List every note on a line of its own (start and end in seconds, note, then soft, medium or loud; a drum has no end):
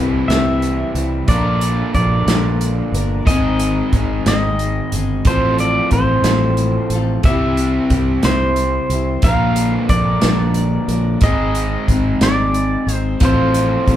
0.00 0.23 C2 medium
0.00 1.26 C3 medium
0.00 1.27 E3 medium
0.00 0.29 G3 medium
0.00 1.27 G3 medium
0.00 0.29 C4 medium
0.00 1.27 C4 medium
0.00 0.29 E4 medium
0.00 1.28 E4 medium
0.00 0.27 G4 medium
0.00 0.25 E5 medium
0.28 0.83 C2 medium
0.28 0.96 C3 soft
0.28 0.96 G3 soft
0.28 0.96 C4 soft
0.28 0.95 E4 medium
0.28 0.94 G4 medium
0.28 1.24 E5 medium
0.28 snare medium
0.28 closed hi-hat medium
0.62 closed hi-hat soft
0.95 1.22 C2 medium
0.95 1.30 C4 soft
0.95 1.29 E4 soft
0.95 1.28 G4 soft
0.95 closed hi-hat medium
1.28 1.82 A#1 medium
1.28 1.95 A#2 medium
1.28 1.95 D3 medium
1.28 1.93 F3 medium
1.28 1.94 A#3 medium
1.28 1.95 D4 medium
1.28 3.26 F4 medium
1.28 1.96 A#4 medium
1.28 1.93 D5 medium
1.28 kick medium
1.28 closed hi-hat medium
1.61 closed hi-hat medium
1.94 2.22 A#1 medium
1.94 2.27 F3 medium
1.94 2.28 A#3 medium
1.94 2.27 D4 medium
1.94 2.26 A#4 medium
1.94 3.27 D5 medium
1.94 kick medium
1.94 closed hi-hat soft
2.27 2.81 A#1 medium
2.27 2.95 A#2 soft
2.27 2.95 D3 soft
2.27 2.95 F3 medium
2.27 2.94 A#3 soft
2.27 2.94 D4 medium
2.27 2.93 A#4 medium
2.27 snare loud
2.27 closed hi-hat medium
2.61 closed hi-hat medium
2.92 3.20 G1 medium
2.92 3.28 D4 soft
2.92 3.27 A#4 medium
2.92 closed hi-hat medium
2.97 3.28 F3 soft
2.97 3.28 A#3 soft
3.27 3.81 G#1 medium
3.27 3.93 G#2 medium
3.27 3.94 D#3 medium
3.27 3.92 G#3 medium
3.27 3.94 C4 medium
3.27 3.94 D#4 medium
3.27 3.95 G#4 medium
3.27 4.22 D#5 medium
3.27 kick medium
3.27 closed hi-hat medium
3.60 closed hi-hat medium
3.93 4.20 G#1 medium
3.93 4.26 G#3 soft
3.93 4.27 C4 medium
3.93 4.27 D#4 medium
3.93 kick medium
3.93 closed hi-hat soft
3.97 4.26 G#4 medium
4.26 4.80 G#1 medium
4.26 4.94 D#3 medium
4.26 4.94 G#3 soft
4.26 4.95 C4 soft
4.26 4.93 D#4 medium
4.26 4.92 G#4 medium
4.26 5.29 D#5 medium
4.26 snare loud
4.26 closed hi-hat medium
4.30 4.95 G#2 soft
4.59 closed hi-hat medium
4.92 5.19 G1 medium
4.92 5.26 C4 soft
4.92 5.27 D#4 soft
4.92 5.26 G#4 soft
4.92 closed hi-hat medium
4.96 5.26 G#3 soft
5.25 5.79 A1 medium
5.25 5.92 A2 medium
5.25 5.92 F3 medium
5.25 5.94 C4 medium
5.25 5.93 F4 medium
5.25 5.93 A4 medium
5.25 5.57 C5 medium
5.25 kick medium
5.25 closed hi-hat medium
5.58 5.92 D5 medium
5.58 closed hi-hat medium
5.91 6.19 A1 medium
5.91 6.26 F3 soft
5.91 6.26 C4 medium
5.91 7.21 C5 medium
5.91 kick medium
5.91 closed hi-hat soft
5.95 6.26 F4 medium
5.95 6.25 A4 medium
6.23 6.78 A1 medium
6.23 6.91 A4 medium
6.23 snare loud
6.23 closed hi-hat medium
6.27 6.93 A2 soft
6.27 6.93 F3 soft
6.27 6.92 C4 medium
6.27 6.92 F4 medium
6.57 closed hi-hat soft
6.90 7.17 A1 medium
6.90 7.25 A4 medium
6.90 closed hi-hat medium
6.95 7.27 C4 soft
6.95 7.26 F4 soft
7.23 7.78 C2 medium
7.23 7.92 C3 medium
7.23 7.90 G3 medium
7.23 8.27 E5 medium
7.23 kick medium
7.23 closed hi-hat medium
7.28 7.91 C4 medium
7.28 7.92 E4 medium
7.28 7.93 G4 medium
7.57 closed hi-hat medium
7.90 8.17 C2 medium
7.90 8.24 G3 medium
7.90 8.25 C4 medium
7.90 8.25 E4 medium
7.90 8.25 G4 medium
7.90 kick medium
7.90 closed hi-hat medium
8.23 8.78 C2 medium
8.23 8.91 E4 medium
8.23 8.90 G4 soft
8.23 9.27 C5 medium
8.23 snare medium
8.23 closed hi-hat medium
8.28 8.92 C3 soft
8.28 8.92 G3 soft
8.28 8.92 C4 soft
8.56 closed hi-hat soft
8.90 9.17 C2 medium
8.90 9.24 G4 soft
8.90 closed hi-hat medium
8.94 9.25 C4 soft
8.94 9.25 E4 soft
9.22 9.77 A#1 medium
9.22 9.90 A#2 medium
9.22 9.90 D3 medium
9.22 9.89 F3 medium
9.22 9.90 A#3 medium
9.22 9.91 D4 medium
9.22 9.86 F5 medium
9.22 kick medium
9.22 closed hi-hat medium
9.26 9.91 A#4 medium
9.56 closed hi-hat medium
9.89 10.16 A#1 medium
9.89 10.23 F3 medium
9.89 10.24 A#3 medium
9.89 10.23 D4 medium
9.89 11.23 D5 medium
9.89 kick medium
9.89 closed hi-hat medium
9.94 10.22 A#4 medium
10.22 10.77 A#1 medium
10.22 10.91 D3 medium
10.22 10.90 F3 soft
10.22 10.90 A#3 soft
10.22 10.89 D4 medium
10.22 10.87 A#4 medium
10.22 snare loud
10.22 closed hi-hat medium
10.26 10.91 A#2 soft
10.54 closed hi-hat medium
10.88 11.16 A#1 medium
10.88 11.23 A#3 soft
10.88 11.23 D4 soft
10.88 11.22 A#4 medium
10.88 closed hi-hat medium
10.93 11.22 F3 soft
11.21 11.76 G#1 medium
11.21 11.89 G#2 medium
11.21 11.89 D#3 medium
11.21 11.87 G#3 medium
11.21 11.89 C4 medium
11.21 11.89 D#4 medium
11.21 11.90 G#4 medium
11.21 12.22 D#5 medium
11.21 kick medium
11.21 closed hi-hat medium
11.55 closed hi-hat medium
11.88 12.15 G#1 medium
11.88 12.22 G#3 medium
11.88 12.21 C4 medium
11.88 12.21 D#4 medium
11.88 12.20 G#4 medium
11.88 kick medium
11.88 closed hi-hat soft
12.21 12.75 G#1 medium
12.21 12.89 G#2 soft
12.21 12.89 D#3 soft
12.21 12.89 G#3 medium
12.21 12.88 C4 medium
12.21 12.87 D#4 medium
12.21 12.85 G#4 medium
12.21 12.95 D5 medium
12.21 snare loud
12.21 closed hi-hat medium
12.54 closed hi-hat soft
12.87 13.14 G#1 medium
12.87 13.20 G#3 soft
12.87 13.19 C4 soft
12.87 13.21 D#4 soft
12.87 13.21 G#4 soft
12.87 closed hi-hat medium
12.95 13.25 C5 medium
13.19 13.76 A1 medium
13.19 13.87 A2 medium
13.19 13.85 F3 medium
13.19 13.86 C4 medium
13.19 13.88 F4 medium
13.19 13.88 A4 medium
13.19 kick medium
13.19 closed hi-hat medium
13.25 13.96 C5 medium
13.54 closed hi-hat medium
13.86 13.96 A1 medium
13.86 13.96 F3 medium
13.86 13.96 C4 medium
13.86 13.96 F4 medium
13.86 13.96 A4 medium
13.86 kick medium
13.86 closed hi-hat soft